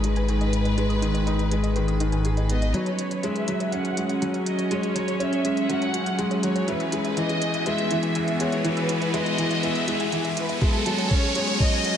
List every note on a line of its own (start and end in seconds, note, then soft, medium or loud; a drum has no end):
0.00 2.72 G#1 medium
0.00 0.29 D#3 medium
0.00 3.86 D#3 medium
0.00 0.04 G#3 medium
0.00 2.75 G#3 medium
0.00 1.27 D#4 medium
0.00 2.21 B4 medium
0.00 2.75 G#5 medium
0.00 closed hi-hat medium
0.04 0.18 G#3 medium
0.04 0.08 D#4 medium
0.16 0.25 G#5 medium
0.16 closed hi-hat soft
0.28 0.43 D#3 medium
0.28 0.34 G#5 medium
0.28 closed hi-hat soft
0.41 0.44 D#5 medium
0.41 closed hi-hat soft
0.45 4.32 B4 medium
0.53 closed hi-hat medium
0.65 0.71 D#5 medium
0.65 closed hi-hat soft
0.77 1.01 G#3 medium
0.77 0.83 D#4 medium
0.77 closed hi-hat soft
0.89 0.96 D#6 medium
0.89 closed hi-hat soft
1.02 1.17 D#3 medium
1.02 1.06 D#4 medium
1.02 closed hi-hat medium
1.14 1.18 D#5 medium
1.14 closed hi-hat soft
1.26 1.41 D#4 medium
1.26 1.35 D#5 medium
1.26 closed hi-hat soft
1.39 1.43 G#4 medium
1.39 closed hi-hat soft
1.51 1.66 G#3 medium
1.51 closed hi-hat medium
1.63 1.69 D#5 medium
1.63 closed hi-hat soft
1.76 1.90 D#3 medium
1.76 1.80 B4 medium
1.76 closed hi-hat soft
1.88 1.94 D#6 medium
1.88 closed hi-hat soft
2.00 2.24 D#3 medium
2.00 2.04 D#4 medium
2.00 closed hi-hat medium
2.12 2.22 G#5 medium
2.12 closed hi-hat soft
2.25 2.39 G#4 medium
2.25 2.31 G#5 medium
2.25 closed hi-hat soft
2.37 2.41 D#5 medium
2.37 closed hi-hat soft
2.50 2.73 B3 medium
2.50 2.73 D#5 medium
2.50 closed hi-hat medium
2.62 2.68 D#5 medium
2.62 closed hi-hat soft
2.74 6.66 F#1 medium
2.74 6.68 F#3 medium
2.74 2.89 F#3 medium
2.74 2.80 F#4 medium
2.74 3.24 C#5 medium
2.74 closed hi-hat soft
2.74 riser medium
2.86 8.15 C#4 medium
2.86 2.93 A5 medium
2.86 closed hi-hat soft
2.99 3.03 F#4 medium
2.99 closed hi-hat medium
3.10 3.15 C#5 medium
3.10 11.97 G#5 medium
3.10 closed hi-hat soft
3.23 3.47 G#3 medium
3.23 3.32 C#5 medium
3.23 3.73 E5 medium
3.23 closed hi-hat soft
3.36 3.39 G#4 medium
3.36 closed hi-hat soft
3.48 3.62 F#3 medium
3.48 closed hi-hat medium
3.60 3.66 C#5 medium
3.60 closed hi-hat soft
3.72 3.87 C#4 medium
3.72 3.76 A4 medium
3.72 4.22 F#5 medium
3.72 closed hi-hat soft
3.85 3.91 A5 medium
3.85 closed hi-hat soft
3.97 4.12 G#3 medium
3.97 4.01 F#4 medium
3.97 closed hi-hat medium
4.09 4.18 F#5 medium
4.09 closed hi-hat soft
4.22 4.36 F#3 medium
4.22 4.28 F#5 medium
4.22 closed hi-hat soft
4.33 4.37 C#5 medium
4.33 closed hi-hat soft
4.46 4.70 D#5 medium
4.46 closed hi-hat medium
4.58 4.64 C#5 medium
4.58 closed hi-hat soft
4.70 4.95 G#3 medium
4.70 4.77 F#4 medium
4.70 5.21 C#5 medium
4.70 closed hi-hat soft
4.83 4.89 A5 medium
4.83 closed hi-hat soft
4.95 5.10 F#3 medium
4.95 4.99 F#4 medium
4.95 closed hi-hat medium
5.08 5.11 C#5 medium
5.08 closed hi-hat soft
5.20 5.35 C#4 medium
5.20 5.29 C#5 loud
5.20 5.70 E5 medium
5.20 closed hi-hat soft
5.32 5.36 G#4 medium
5.32 closed hi-hat soft
5.45 5.59 G#3 medium
5.45 closed hi-hat medium
5.57 5.63 C#5 medium
5.57 closed hi-hat soft
5.69 5.84 F#3 medium
5.69 5.73 A4 medium
5.69 6.19 F#5 loud
5.69 closed hi-hat soft
5.82 5.88 A5 medium
5.82 closed hi-hat soft
5.94 5.98 F#4 medium
5.94 closed hi-hat medium
6.06 6.15 F#5 medium
6.06 closed hi-hat soft
6.18 6.42 G#3 medium
6.18 6.24 F#5 medium
6.18 closed hi-hat soft
6.31 6.35 C#5 medium
6.31 closed hi-hat soft
6.43 6.58 F#3 medium
6.43 6.67 C#5 medium
6.43 closed hi-hat medium
6.55 6.61 C#5 medium
6.55 closed hi-hat soft
6.68 10.59 E1 medium
6.68 10.62 E3 medium
6.68 6.74 E4 loud
6.68 6.82 E4 medium
6.68 7.18 B4 medium
6.68 closed hi-hat soft
6.80 6.86 E6 medium
6.80 closed hi-hat soft
6.92 7.07 G#3 medium
6.92 6.96 E4 medium
6.92 closed hi-hat medium
7.05 7.08 E5 medium
7.05 closed hi-hat soft
7.16 7.31 E3 medium
7.16 11.70 F#4 medium
7.16 7.67 D#5 loud
7.16 7.26 E5 loud
7.16 closed hi-hat soft
7.24 11.97 B3 medium
7.29 7.33 G#4 medium
7.29 closed hi-hat soft
7.42 closed hi-hat medium
7.54 7.60 E5 medium
7.54 closed hi-hat soft
7.66 7.90 G#3 medium
7.66 7.70 B4 medium
7.66 8.12 E5 loud
7.66 closed hi-hat soft
7.78 7.85 E6 medium
7.78 closed hi-hat soft
7.91 8.05 E3 medium
7.91 7.94 E4 medium
7.91 closed hi-hat medium
8.03 8.12 G#5 loud
8.03 closed hi-hat soft
8.15 8.30 E4 medium
8.15 8.21 G#5 medium
8.15 closed hi-hat soft
8.28 8.31 E5 medium
8.28 closed hi-hat soft
8.40 8.54 G#3 medium
8.40 8.64 C#5 medium
8.40 closed hi-hat medium
8.52 8.58 E5 medium
8.52 closed hi-hat soft
8.64 8.79 E3 medium
8.64 8.70 E4 loud
8.64 9.14 B4 medium
8.64 closed hi-hat soft
8.77 8.83 E6 medium
8.77 closed hi-hat soft
8.89 8.93 E4 medium
8.89 closed hi-hat medium
9.02 9.05 E5 medium
9.02 closed hi-hat soft
9.14 9.37 G#3 loud
9.14 9.63 D#5 loud
9.14 9.23 E5 medium
9.14 closed hi-hat soft
9.26 9.30 G#4 medium
9.26 closed hi-hat soft
9.38 9.53 E3 medium
9.38 closed hi-hat medium
9.51 9.57 E5 medium
9.51 closed hi-hat soft
9.63 9.77 E4 medium
9.63 9.67 B4 medium
9.63 10.12 E5 loud
9.63 closed hi-hat soft
9.75 9.81 E6 medium
9.75 closed hi-hat soft
9.88 10.02 G#3 medium
9.88 9.91 E4 medium
9.88 closed hi-hat medium
10.00 10.09 G#5 loud
10.00 closed hi-hat soft
10.12 10.26 E3 medium
10.12 10.18 G#5 medium
10.12 closed hi-hat soft
10.25 10.28 E5 medium
10.25 closed hi-hat soft
10.37 10.60 B4 medium
10.37 closed hi-hat medium
10.49 10.55 E5 medium
10.49 closed hi-hat soft
10.62 11.97 F#1 medium
10.62 11.97 F#3 medium
10.62 10.85 G#3 medium
10.62 10.67 F#4 medium
10.62 11.08 A4 medium
10.62 kick loud
10.62 closed hi-hat soft
10.74 10.80 A5 medium
10.74 closed hi-hat soft
10.86 11.00 F#3 medium
10.86 10.90 F#4 medium
10.86 closed hi-hat medium
10.94 11.97 C#4 medium
10.98 11.02 C#5 medium
10.98 closed hi-hat soft
11.11 11.25 C#4 medium
11.11 11.60 C#5 loud
11.11 11.19 C#5 medium
11.11 kick loud
11.11 closed hi-hat soft
11.23 11.27 G#4 medium
11.23 closed hi-hat soft
11.35 11.49 G#3 medium
11.35 closed hi-hat medium
11.48 11.54 C#5 medium
11.48 closed hi-hat soft
11.60 11.74 F#3 medium
11.60 11.64 A4 medium
11.60 11.97 D#5 loud
11.60 kick loud
11.60 closed hi-hat soft
11.72 11.78 A5 medium
11.72 closed hi-hat soft
11.85 11.88 F#4 medium
11.85 closed hi-hat medium